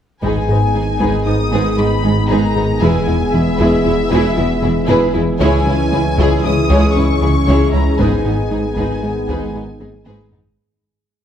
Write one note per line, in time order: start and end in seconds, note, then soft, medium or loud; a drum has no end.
0.22 2.84 G#1 medium
0.22 0.32 G#1 soft
0.22 0.38 G#2 medium
0.22 0.32 G#2 soft
0.22 2.78 D#3 soft
0.22 0.39 G#3 medium
0.22 0.48 G#3 soft
0.22 5.37 G#3 soft
0.22 5.38 G#3 medium
0.22 5.37 B3 soft
0.22 5.38 B3 medium
0.22 0.48 D#4 medium
0.22 2.79 D#4 medium
0.22 5.37 G#4 soft
0.22 0.48 G#4 soft
0.22 5.37 G#4 medium
0.22 0.48 B4 soft
0.22 1.23 G#5 medium
0.22 taiko soft
0.48 0.57 G#1 soft
0.48 0.64 G#2 soft
0.48 0.58 G#2 soft
0.48 0.58 G#3 soft
0.48 0.58 B3 soft
0.48 0.57 D#4 soft
0.48 0.58 D#4 soft
0.48 0.65 G#4 soft
0.74 0.83 G#1 soft
0.74 0.84 G#2 soft
0.74 0.90 G#3 soft
0.74 0.82 G#3 soft
0.74 0.82 D#4 soft
0.74 0.83 D#4 soft
0.74 0.90 D#4 medium
0.74 0.83 G#4 soft
1.00 1.09 G#1 medium
1.00 1.16 G#2 medium
1.00 1.09 G#2 soft
1.00 1.16 G#3 medium
1.00 1.25 G#3 soft
1.00 1.24 D#4 soft
1.00 1.25 G#4 soft
1.00 1.25 B4 soft
1.00 taiko soft
1.26 1.35 G#1 soft
1.26 1.35 G#2 soft
1.26 1.34 G#3 soft
1.26 1.42 G#3 medium
1.26 1.34 B3 soft
1.26 1.34 D#4 soft
1.26 1.42 D#4 soft
1.26 1.34 D#4 soft
1.26 1.77 D#6 medium
1.51 1.61 G#1 medium
1.51 1.68 G#2 medium
1.51 1.61 G#2 medium
1.51 1.76 G#3 medium
1.51 1.68 G#3 medium
1.51 1.76 D#4 soft
1.51 1.76 G#4 medium
1.51 1.76 B4 medium
1.77 1.87 G#1 soft
1.77 1.94 G#2 soft
1.77 1.87 G#2 soft
1.77 1.86 G#3 soft
1.77 1.85 B3 soft
1.77 1.85 D#4 soft
1.77 1.86 D#4 soft
1.77 1.94 G#4 medium
1.77 2.31 B5 medium
2.03 2.13 G#1 soft
2.03 2.20 G#2 medium
2.03 2.13 G#2 soft
2.03 2.12 G#3 soft
2.03 2.11 D#4 soft
2.03 2.12 D#4 soft
2.03 2.11 G#4 soft
2.03 2.20 G#4 medium
2.29 2.39 G#1 medium
2.29 2.45 G#2 medium
2.29 2.39 G#2 medium
2.29 2.54 G#3 medium
2.29 2.46 G#3 medium
2.29 2.54 D#4 medium
2.29 2.54 G#4 medium
2.29 2.54 B4 medium
2.29 2.81 A#5 medium
2.56 2.64 G#1 soft
2.56 2.72 G#2 medium
2.56 2.64 G#2 soft
2.56 2.64 G#3 soft
2.56 2.64 B3 soft
2.56 2.64 D#4 soft
2.56 2.64 D#4 medium
2.56 2.72 G#4 soft
2.81 2.90 E1 medium
2.81 5.42 E1 medium
2.81 2.98 E2 medium
2.81 2.90 E2 medium
2.81 2.97 E3 medium
2.81 7.96 E3 medium
2.81 3.05 G#3 medium
2.81 3.06 E4 medium
2.81 8.00 E4 medium
2.81 3.06 G#4 medium
2.81 3.06 B4 medium
2.81 3.34 G#5 medium
3.06 3.16 E1 soft
3.06 3.24 E2 soft
3.06 3.16 E2 soft
3.06 3.15 G#3 soft
3.06 3.14 B3 soft
3.06 3.14 E4 soft
3.06 3.15 E4 soft
3.06 3.23 E4 medium
3.33 3.42 E1 soft
3.33 3.42 E2 soft
3.33 3.50 E3 medium
3.33 3.41 G#3 soft
3.33 3.49 B3 medium
3.33 3.41 E4 soft
3.33 3.41 G#4 soft
3.33 5.14 E5 medium
3.58 3.67 E1 medium
3.58 3.68 E2 medium
3.58 3.75 E2 medium
3.58 3.75 E3 medium
3.58 3.84 G#3 medium
3.58 3.84 E4 medium
3.58 3.83 G#4 soft
3.58 3.83 B4 medium
3.85 3.94 E1 soft
3.85 3.93 E2 soft
3.85 4.01 E3 medium
3.85 3.94 G#3 soft
3.85 3.93 B3 medium
3.85 4.01 B3 medium
3.85 3.93 E4 medium
3.85 3.94 E4 soft
4.11 4.20 E1 medium
4.11 4.27 E2 medium
4.11 4.19 E2 medium
4.11 4.27 E3 medium
4.11 4.36 G#3 medium
4.11 4.36 E4 medium
4.11 4.35 G#4 medium
4.11 4.35 B4 medium
4.37 4.46 E1 soft
4.37 4.52 E2 soft
4.37 4.45 E2 medium
4.37 4.45 G#3 soft
4.37 4.45 B3 medium
4.37 4.45 E4 medium
4.37 4.53 E4 medium
4.63 4.71 E1 medium
4.63 4.79 E2 medium
4.63 4.72 E2 medium
4.63 4.71 G#3 soft
4.63 4.71 E4 soft
4.63 4.71 E4 medium
4.63 4.79 E4 medium
4.63 4.71 G#4 medium
4.88 4.97 E1 medium
4.88 5.05 E2 medium
4.88 4.97 E2 medium
4.88 5.04 E3 medium
4.88 5.12 G#3 medium
4.88 5.13 E4 medium
4.88 5.13 G#4 medium
4.88 5.13 B4 medium
5.14 5.23 E1 soft
5.14 5.30 E2 medium
5.14 5.24 E2 medium
5.14 5.22 G#3 medium
5.14 5.22 B3 medium
5.14 5.22 E4 medium
5.14 5.30 E4 medium
5.40 8.01 C#2 medium
5.40 5.56 C#2 medium
5.40 5.49 C#2 medium
5.40 5.56 C#3 medium
5.40 5.64 G#3 medium
5.40 10.54 G#3 medium
5.40 10.29 G#3 medium
5.40 8.00 C#4 medium
5.40 7.81 C#4 medium
5.40 5.64 E4 medium
5.40 10.28 G#4 medium
5.40 5.65 G#4 medium
5.40 10.54 G#4 medium
5.40 5.65 C#5 medium
5.40 6.40 G#5 medium
5.40 taiko medium
5.65 5.74 C#2 medium
5.65 5.82 C#2 medium
5.65 5.75 C#2 soft
5.65 5.73 G#3 soft
5.65 5.82 C#4 medium
5.65 5.75 C#4 soft
5.65 5.73 E4 medium
5.65 5.76 E4 soft
5.92 6.01 C#2 soft
5.92 6.08 C#3 medium
5.92 6.08 G#3 medium
5.92 6.01 G#3 soft
5.92 6.01 E4 medium
5.92 6.01 E4 soft
5.92 6.00 G#4 medium
6.18 6.26 C#2 medium
6.18 6.34 C#2 medium
6.18 6.27 C#2 medium
6.18 6.34 C#3 medium
6.18 6.43 G#3 medium
6.18 6.43 E4 medium
6.18 6.43 G#4 medium
6.18 6.43 C#5 medium
6.18 taiko medium
6.44 6.53 C#2 soft
6.44 6.53 C#2 medium
6.44 6.60 C#3 medium
6.44 6.60 G#3 medium
6.44 6.53 G#3 soft
6.44 6.53 C#4 medium
6.44 6.53 E4 soft
6.44 6.53 E4 medium
6.44 6.96 D#6 medium
6.70 6.86 C#2 medium
6.70 6.79 C#2 medium
6.70 6.86 C#3 medium
6.70 6.95 G#3 medium
6.70 6.95 E4 medium
6.70 6.94 G#4 medium
6.70 6.94 C#5 medium
6.70 taiko medium
6.95 7.11 C#2 soft
6.95 7.04 C#2 soft
6.95 7.05 G#3 soft
6.95 7.04 C#4 medium
6.95 7.12 C#4 medium
6.95 7.04 E4 medium
6.95 7.73 C#6 medium
7.21 7.37 C#2 medium
7.21 7.30 C#2 soft
7.21 7.31 C#2 medium
7.21 7.31 G#3 soft
7.21 7.38 C#4 medium
7.21 7.30 E4 medium
7.21 7.31 E4 soft
7.21 7.30 G#4 medium
7.47 7.63 C#2 medium
7.47 7.56 C#2 medium
7.47 7.63 C#3 medium
7.47 7.73 G#3 medium
7.47 7.72 E4 medium
7.47 7.72 G#4 medium
7.47 7.72 C#5 medium
7.47 taiko medium
7.73 7.89 C#2 medium
7.73 7.82 C#2 soft
7.73 7.82 G#3 soft
7.73 7.89 C#4 medium
7.73 7.82 C#4 soft
7.73 7.82 E4 soft
7.73 7.99 A#5 medium
7.98 10.58 G#1 medium
7.98 8.08 G#1 medium
7.98 8.15 G#2 medium
7.98 8.08 G#2 medium
7.98 10.28 D#3 medium
7.98 8.15 G#3 medium
7.98 8.24 G#3 medium
7.98 10.28 B3 medium
7.98 10.58 B3 medium
7.98 10.58 D#4 medium
7.98 8.24 D#4 medium
7.98 8.24 G#4 soft
7.98 8.23 B4 medium
7.98 10.07 G#5 medium
7.98 taiko medium
8.24 8.34 G#1 soft
8.24 8.41 G#2 medium
8.24 8.35 G#2 soft
8.24 8.33 G#3 soft
8.24 8.32 B3 soft
8.24 8.32 D#4 soft
8.24 8.33 D#4 soft
8.24 8.41 G#4 medium
8.51 8.60 G#1 soft
8.51 8.60 G#2 soft
8.51 8.66 G#3 medium
8.51 8.59 G#3 soft
8.51 8.59 D#4 soft
8.51 8.67 D#4 medium
8.51 8.60 D#4 soft
8.51 8.59 G#4 soft
8.77 8.85 G#1 medium
8.77 8.93 G#2 medium
8.77 8.86 G#2 soft
8.77 8.93 G#3 medium
8.77 9.01 G#3 soft
8.77 9.01 D#4 medium
8.77 9.01 G#4 soft
8.77 9.01 B4 soft
8.77 taiko medium
9.03 9.11 G#1 soft
9.03 9.12 G#2 soft
9.03 9.19 G#3 medium
9.03 9.12 G#3 soft
9.03 9.11 B3 soft
9.03 9.11 D#4 soft
9.03 9.19 D#4 medium
9.03 9.12 D#4 soft
9.28 9.37 G#1 medium
9.28 9.44 G#2 medium
9.28 9.38 G#2 medium
9.28 9.45 G#3 medium
9.28 9.54 G#3 medium
9.28 9.54 D#4 medium
9.28 9.53 G#4 medium
9.28 9.53 B4 medium
9.28 taiko medium
9.54 9.63 G#1 soft
9.54 9.70 G#2 medium
9.54 9.64 G#2 soft
9.54 9.63 G#3 soft
9.54 9.62 B3 soft
9.54 9.63 D#4 soft
9.54 9.70 G#4 medium
9.80 9.88 G#1 soft
9.80 9.96 G#2 medium
9.80 9.89 G#2 soft
9.80 9.89 G#3 soft
9.80 9.88 D#4 soft
9.80 9.89 D#4 soft
9.80 9.88 G#4 soft
9.80 9.96 G#4 medium
9.80 taiko high medium
10.05 10.14 G#1 medium
10.05 10.22 G#2 medium
10.05 10.15 G#2 medium
10.05 10.22 G#3 medium
10.05 10.31 G#3 medium
10.05 10.31 D#4 medium
10.05 10.30 G#4 medium
10.05 10.30 B4 medium
10.05 taiko high medium
10.32 10.40 G#1 soft
10.32 10.48 G#2 medium
10.32 10.40 G#2 soft
10.32 10.41 G#3 soft
10.32 10.40 B3 soft
10.32 10.40 D#4 soft
10.32 10.41 D#4 soft
10.32 10.48 G#4 medium
10.32 taiko low medium